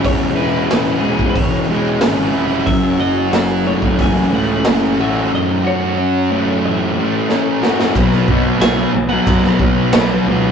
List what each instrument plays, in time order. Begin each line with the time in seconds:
Already playing: distorted electric guitar E3 G#3 C#4 E4
0.05 picked electric bass E1, distorted electric guitar E2, clean electric guitar C#5, kick, open hi-hat
0.35 picked electric bass E1, distorted electric guitar E4, clean electric guitar B4
0.70 picked electric bass E1, distorted electric guitar C#4, snare, open hi-hat
1.00 picked electric bass E1, distorted electric guitar G#3, clean electric guitar G#4
1.19 kick
1.30 clean electric guitar C#5
1.35 picked electric bass E1, distorted electric guitar E3, kick, open hi-hat
1.68 picked electric bass E1, distorted electric guitar G#3
2.01 picked electric bass G#1, distorted electric guitar C#4, snare, open hi-hat
2.33 picked electric bass F1, distorted electric guitar E4
2.66 picked electric bass F#1, distorted electric guitar F#2, clean electric guitar E5, kick, open hi-hat
2.99 picked electric bass F#1, distorted electric guitar F#4, clean electric guitar D#5
3.31 picked electric bass F#1, distorted electric guitar C#4, snare, open hi-hat
3.65 distorted electric guitar A3, clean electric guitar C#5
3.82 kick
3.97 picked electric bass F#1, distorted electric guitar E3, kick, open hi-hat
4.01 clean electric guitar G#5
4.31 picked electric bass C#2, distorted electric guitar A3, clean electric guitar F#5
4.64 picked electric bass F#1, distorted electric guitar C#4, snare, open hi-hat
4.98 picked electric bass A1, distorted electric guitar F#4, clean electric guitar E5
5.31 distorted electric guitar F#2, clean electric guitar D#5
5.64 distorted electric guitar F#4, clean electric guitar C#5
5.97 distorted electric guitar C#4
6.31 distorted electric guitar A3
6.65 distorted electric guitar E3, clean electric guitar E5
6.98 distorted electric guitar A3
7.28 distorted electric guitar C#4, clean electric guitar D#5, snare
7.62 distorted electric guitar F#4, snare
7.79 snare
7.94 picked electric bass B1, distorted electric guitar B2 F#3 B3, kick, crash
8.12 snare
8.27 picked electric bass B1, distorted electric guitar B2 F#3 B3, kick
8.58 picked electric bass B1, distorted electric guitar B2 F#3 B3, clean electric guitar G#5, snare, crash
8.75 distorted electric guitar F#3 B3
8.94 picked electric bass B1, muted distorted electric guitar stroke
9.09 distorted electric guitar F#3 B3, clean electric guitar F#5
9.25 picked electric bass B1, clean electric guitar F#5, kick, crash
9.43 distorted electric guitar F#3 B3, snare
9.59 picked electric bass B1, distorted electric guitar B2 F#3 B3, kick
9.92 picked electric bass B1, distorted electric guitar B2 F#3 B3, clean electric guitar B4, snare, crash
10.11 distorted electric guitar F#3 B3
10.26 picked electric bass C#2, distorted electric guitar B2 F#3
10.31 distorted electric guitar B3